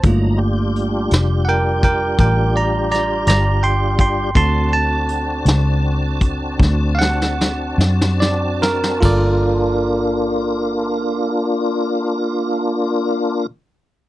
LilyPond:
<<
  \new Staff \with { instrumentName = "Tine electric piano" } { \time 12/8 \key g \minor \tempo 4. = 52 << { r2 <bes' fis'' g''>8 <bes' g''>8 <bes' g''>8 <d'' bes''>8 <d'' bes''>8 <d'' bes''>8 <g'' c'''>8 <g'' c'''>8 | <a'' c'''>8 a''2 r4 <f'' fis''>4. d''8 bes'8 | <f' a' bes' d''>1. | } \\ { <a bes f'>4. r1 r8 | <c' fis' a'>1. | r1. | } >> }
  \new Staff \with { instrumentName = "Tonewheel organ" } { \time 12/8 \key g \minor <fis d' ees' bes''>8 <g d' f' g'>1~ <g d' f' g'>4. | <c' d' fis' a''>1. | <bes d' f'>1. | }
  \new Staff \with { instrumentName = "Fingered electric bass" } { \clef bass \time 12/8 \key g \minor g,,4. f,,4. a,,4. g,,4. | d,4. cis,4. d,4. fis,4. | g,,1. | }
  \new DrumStaff \with { instrumentName = "Drums" } \drummode { \time 12/8 <hh bd>4 hh8 <hh sn>4 <hh bd>8 <hh bd>4 <hh sn>8 <hh sn>4 <hh bd>8 | <hh bd>4 hh8 <hh sn>4 <hh bd>8 <bd sn>8 sn16 sn16 sn8 sn16 sn16 sn8 sn16 sn16 | <cymc bd>4. r4. r4. r4. | }
>>